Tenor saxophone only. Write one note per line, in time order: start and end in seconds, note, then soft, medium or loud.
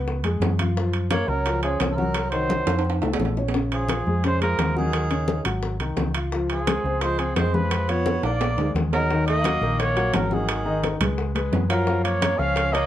1.11 1.29 A#3 medium
1.28 1.62 F#3 medium
1.63 1.89 F3 medium
1.92 1.98 F3 medium
1.97 2.31 F#3 medium
2.31 2.80 F#3 medium
3.72 4.21 F3 medium
4.25 4.41 G#3 medium
4.43 4.75 F3 medium
4.77 5.42 D#3 medium
6.51 7.03 F3 medium
7.01 7.21 G#3 medium
7.20 7.36 F3 medium
7.37 7.57 G#3 medium
7.55 7.92 F3 medium
7.90 8.24 B3 medium
8.25 8.73 A#3 medium
8.93 9.25 F#3 medium
9.29 9.82 A#3 medium
9.82 10.16 A#3 medium
10.14 10.34 F#3 medium
10.32 10.84 D#3 medium
11.70 12.02 F#3 medium
12.04 12.38 A#3 medium
12.37 12.73 C#4 medium
12.72 12.86 A#3 medium